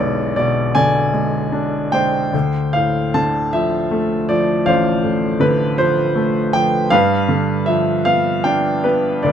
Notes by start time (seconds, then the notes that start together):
Already playing: B2 D3 G#3 B3 D5 E5
0.00 B1
0.36 B2 D5
0.75 D3 D5 G#5
1.13 G#3
1.52 D4
1.92 G#3 C5 G5
2.33 D2
2.73 A2 F5
3.14 D3 A5
3.53 F3 E5
3.91 A3
4.29 F3 D5
4.66 A1 C5 F5
5.03 A2
5.40 D3 B4
5.78 F3 C5
6.15 A3
6.53 F3 G5
6.90 G2 B4 F5
7.29 D3
7.66 F3 E5
8.05 B3 F5
8.44 D4 G5
8.84 B3 B4
9.23 D2 B4 D5